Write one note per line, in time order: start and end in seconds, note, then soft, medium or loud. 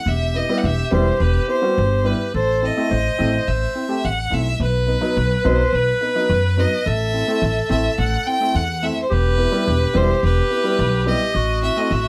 0.06 0.40 E1 medium
0.06 2.31 G4 medium
0.06 0.37 E5 medium
0.34 0.42 B3 soft
0.34 0.42 E4 soft
0.34 0.59 D#5 medium
0.49 0.63 G3 medium
0.49 0.64 B3 medium
0.49 0.63 E4 medium
0.58 0.67 F#5 medium
0.64 0.81 E1 medium
0.64 0.91 E5 medium
0.91 1.09 E1 medium
0.91 1.06 G3 medium
0.91 1.06 B3 medium
0.91 1.06 E4 medium
0.91 1.23 C5 medium
1.20 1.37 E1 loud
1.20 1.48 B4 medium
1.48 1.55 B3 soft
1.48 1.56 E4 soft
1.48 2.07 C5 medium
1.62 1.77 G3 medium
1.62 1.77 B3 medium
1.62 1.77 F#4 medium
1.78 2.12 G1 loud
2.04 2.19 G3 medium
2.04 2.19 B3 soft
2.04 2.19 E4 medium
2.04 2.34 B4 medium
2.34 2.68 A1 medium
2.34 2.87 A4 medium
2.34 2.66 C5 medium
2.62 2.69 C4 soft
2.62 2.70 E4 soft
2.62 3.49 D#5 medium
2.77 2.91 A3 medium
2.77 2.91 C4 medium
2.77 2.91 E4 medium
2.91 3.08 A1 medium
2.91 4.28 C5 medium
3.18 3.37 A1 medium
3.18 3.33 A3 medium
3.18 3.33 C4 medium
3.18 3.33 E4 medium
3.47 3.65 A1 medium
3.47 4.06 E5 medium
3.75 3.82 C4 soft
3.75 3.83 E4 soft
3.88 4.03 A3 medium
3.88 4.04 C4 medium
3.88 4.04 G4 medium
4.04 4.30 A1 medium
4.04 4.35 F#5 medium
4.30 4.58 B1 medium
4.30 4.45 A3 medium
4.30 4.46 C4 soft
4.30 4.46 E4 medium
4.30 4.61 E5 medium
4.60 4.94 B1 medium
4.60 6.83 B4 loud
4.60 5.47 B4 medium
4.87 4.95 B3 soft
4.87 4.95 D#4 soft
5.01 5.16 F#3 medium
5.01 5.16 B3 medium
5.01 5.16 D#4 medium
5.17 5.34 B1 medium
5.44 5.62 B1 medium
5.44 5.59 F#3 medium
5.44 5.59 B3 medium
5.44 5.59 D#4 medium
5.44 5.76 C5 medium
5.73 5.90 B1 medium
5.73 6.61 B4 medium
6.01 6.08 B3 soft
6.01 6.09 D#4 soft
6.15 6.30 F#3 medium
6.15 6.30 B3 medium
6.15 6.30 D#4 medium
6.30 6.64 F#2 loud
6.57 6.72 F#3 soft
6.57 6.72 B3 soft
6.57 6.72 D#4 medium
6.57 6.89 D#5 medium
6.86 7.20 A1 medium
6.86 8.80 A4 loud
6.86 7.70 E5 medium
7.13 7.21 C4 soft
7.13 7.21 E4 soft
7.27 7.42 A3 medium
7.27 7.42 C4 medium
7.27 7.42 E4 medium
7.42 7.59 A1 medium
7.69 7.87 A1 medium
7.69 7.84 A3 medium
7.69 7.84 C4 medium
7.69 7.84 E4 medium
7.69 7.97 E5 medium
7.98 8.15 A1 medium
7.98 8.28 F#5 medium
8.26 8.34 C4 soft
8.26 8.34 E4 soft
8.26 8.57 G5 loud
8.40 8.55 A3 medium
8.40 8.55 C4 medium
8.40 8.55 E4 medium
8.55 8.88 E2 loud
8.55 8.84 F#5 medium
8.82 8.97 A3 medium
8.82 8.97 C4 soft
8.82 8.97 E4 medium
8.82 9.02 E5 medium
9.02 9.14 C5 medium
9.10 9.45 E1 medium
9.10 9.63 G4 loud
9.10 9.98 B4 loud
9.37 9.45 B3 soft
9.37 9.45 E4 medium
9.52 9.66 G3 medium
9.52 9.66 B3 medium
9.52 9.67 E4 medium
9.66 9.84 E1 loud
9.66 11.36 G4 loud
9.94 10.12 E1 medium
9.94 10.09 G3 medium
9.94 10.08 B3 medium
9.94 10.09 E4 medium
9.94 10.24 C5 medium
10.23 10.40 E1 medium
10.23 11.04 B4 loud
10.50 10.58 B3 soft
10.50 10.58 E4 soft
10.64 10.78 G3 medium
10.64 10.78 B3 medium
10.64 10.79 E4 medium
10.79 11.12 B1 loud
11.06 11.20 G3 medium
11.06 11.20 B3 medium
11.06 11.20 E4 medium
11.06 11.59 D#5 loud
11.35 11.68 A1 medium
11.35 12.08 F#4 loud
11.62 11.69 C4 soft
11.62 11.69 E4 soft
11.62 11.79 E5 medium
11.76 11.90 A3 medium
11.76 11.90 C4 medium
11.76 11.91 E4 medium
11.76 11.93 D#5 medium
11.91 12.07 A1 medium
11.91 12.08 E5 medium